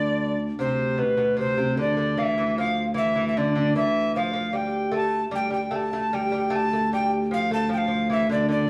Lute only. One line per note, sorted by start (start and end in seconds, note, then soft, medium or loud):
0.00 0.33 D3 medium
0.59 0.99 C3 medium
0.98 1.16 B2 medium
1.17 1.38 B2 medium
1.37 1.56 C3 medium
1.57 1.77 C3 medium
1.77 1.96 D3 medium
1.97 2.17 D3 medium
2.17 2.37 E3 medium
2.38 2.58 E3 medium
2.58 2.85 F3 medium
2.94 3.14 E3 medium
3.15 3.36 E3 medium
3.37 3.54 D3 medium
3.55 3.75 D3 medium
3.76 4.16 E3 medium
4.16 4.32 F3 medium
4.33 4.52 F3 medium
4.53 4.94 G3 medium
4.92 5.20 A3 medium
5.31 5.49 G3 medium
5.50 5.72 G3 medium
5.71 5.92 A3 medium
5.93 6.13 A3 medium
6.13 6.31 G3 medium
6.32 6.52 G3 medium
6.50 6.69 A3 medium
6.73 6.93 A3 medium
6.93 7.10 G3 medium
7.31 7.51 F3 medium
7.51 7.71 A3 medium
7.69 7.87 F3 medium
7.88 8.09 F3 medium
8.10 8.29 E3 medium
8.29 8.47 D3 medium
8.49 8.67 D3 medium